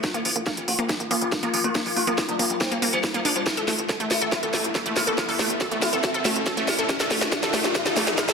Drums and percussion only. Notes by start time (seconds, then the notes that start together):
0.04 kick, snare, closed hi-hat
0.14 closed hi-hat
0.25 open hi-hat
0.36 closed hi-hat
0.47 kick, snare, closed hi-hat
0.57 closed hi-hat
0.68 open hi-hat
0.79 closed hi-hat
0.89 kick, snare, closed hi-hat
1.00 closed hi-hat
1.11 open hi-hat
1.22 closed hi-hat
1.32 kick, snare, closed hi-hat
1.43 closed hi-hat
1.54 open hi-hat
1.64 closed hi-hat
1.75 kick, snare, closed hi-hat
1.86 open hi-hat
1.97 open hi-hat
2.07 closed hi-hat
2.18 kick, snare, closed hi-hat
2.29 closed hi-hat
2.39 open hi-hat
2.50 closed hi-hat
2.61 kick, snare, closed hi-hat
2.71 closed hi-hat
2.82 open hi-hat
2.93 closed hi-hat
3.04 kick, snare, closed hi-hat
3.14 closed hi-hat
3.25 open hi-hat
3.36 closed hi-hat
3.46 kick, snare, closed hi-hat
3.57 closed hi-hat
3.68 snare, open hi-hat
3.79 closed hi-hat
3.89 kick, snare, closed hi-hat
4.00 closed hi-hat
4.11 snare, open hi-hat
4.21 closed hi-hat
4.32 kick, snare, closed hi-hat
4.43 closed hi-hat
4.54 snare, open hi-hat
4.64 closed hi-hat
4.75 kick, snare, closed hi-hat
4.86 closed hi-hat
4.96 snare, open hi-hat
5.07 closed hi-hat
5.18 kick, snare, closed hi-hat
5.29 open hi-hat
5.39 snare, open hi-hat
5.50 closed hi-hat
5.61 kick, snare, closed hi-hat
5.71 closed hi-hat
5.82 snare, open hi-hat
5.93 closed hi-hat
6.04 kick, snare, closed hi-hat
6.14 closed hi-hat
6.25 snare, open hi-hat
6.36 closed hi-hat
6.46 kick, snare, closed hi-hat
6.57 closed hi-hat
6.68 snare, open hi-hat
6.79 closed hi-hat
6.89 kick, snare, closed hi-hat
7.00 snare, closed hi-hat
7.11 snare, open hi-hat
7.21 snare, closed hi-hat
7.32 kick, snare, closed hi-hat
7.43 snare, closed hi-hat
7.54 snare, open hi-hat
7.64 snare, closed hi-hat
7.75 kick, snare, closed hi-hat
7.86 snare, closed hi-hat
7.96 snare, open hi-hat
8.07 snare, closed hi-hat
8.18 kick, snare, closed hi-hat
8.29 snare, closed hi-hat